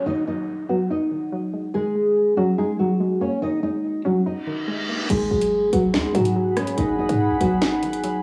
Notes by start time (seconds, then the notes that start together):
Already playing: F#3 G#3 D#4, downlifter
0.06 D#3 D#4 D#5
0.27 F#3 D#4 D#5
0.69 F#3 B3 F#4
0.90 D#4 D#5
1.11 D#3
1.32 F#3
1.53 G#3
1.74 D#3 G#3 G#4
1.95 G#3
2.37 F#3 C#4 F#4
2.58 G#3 D#4 G#4
2.79 D#3 F#3 F#4
3.00 G#3
3.21 A#3 C#4 C#5
3.42 D#3 D#4 D#5
3.63 G#3 D#4 D#5
4.05 F#3 C#4 F#4
4.26 D#4 D#5, reverse cymbal
4.47 D#3
4.68 G#3
4.89 A#3
5.10 G#1 D#3 G#3 G#4 F#5 B5, closed hi-hat, crash
5.31 G#1 F#3
5.41 closed hi-hat
5.73 G#1 F#3 B3 F#4, closed hi-hat
5.94 D#2 G#3 D#4 G#4, finger snap, snare
6.04 G#1
6.15 G#2 D#3 F#3 F#4, closed hi-hat
6.25 closed hi-hat
6.36 F#3
6.57 G#3 C#4 C#5, cross-stick, closed hi-hat
6.67 closed hi-hat
6.78 G#1 D#3 D#4 D#5, closed hi-hat
6.99 F#3 D#4 D#5
7.09 G#2, closed hi-hat
7.30 A#1
7.40 G#1 F#3 B3 F#4, closed hi-hat
7.62 D#4 D#5, finger snap, snare, closed hi-hat
7.83 D#3, closed hi-hat
7.93 closed hi-hat
8.04 F#3, closed hi-hat